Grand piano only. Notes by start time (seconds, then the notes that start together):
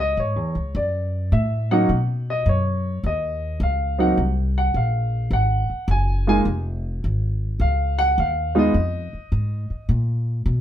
0.00 D#5
0.20 C#5
0.76 D5
1.33 E5
1.71 F#3 A#3 C#4 D#4 F#5
2.30 D#5
2.49 C#5
3.06 D#5
3.63 F5
3.98 F#3 A#3 C4 D#4 F#5
4.58 F#5
4.77 F5
5.33 F#5
5.91 G#5
6.27 G#3 A#3 D#4 F4 G#5
7.61 F5
7.99 F#5
8.20 F5
8.55 G#3 B3 D#4 F4 D#5